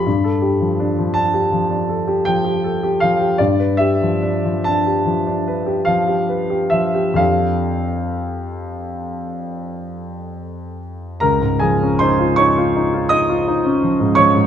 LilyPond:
\new Staff \with { instrumentName = "Grand piano" } { \time 9/8 \key f \major \tempo 4. = 51 << { b''4. a''4. g''4 f''8 | d''8 e''4 a''4. f''4 e''8 | f''1 r8 | \key des \major <bes' bes''>8 <aes' aes''>8 <c'' c'''>8 <des'' des'''>4 <ees'' ees'''>4. <des'' des'''>8 | } \\ { g,16 a'16 g'16 f16 d'16 f16 d'16 g'16 f16 d'16 a'16 g'16 f16 g'16 a'16 g'16 f16 g'16 | g,16 b'16 g'16 f16 d'16 f16 d'16 g'16 f16 d'16 b'16 g'16 f16 g'16 b'16 g'16 f16 g'16 | <f, f d' g' a'>1~ <f, f d' g' a'>8 | des,16 aes,16 f16 des'16 ees'16 f'16 ees'16 f'16 ees'16 f'16 ees'16 f'16 ees'16 des'16 f16 aes,16 f16 aes,16 | } >> }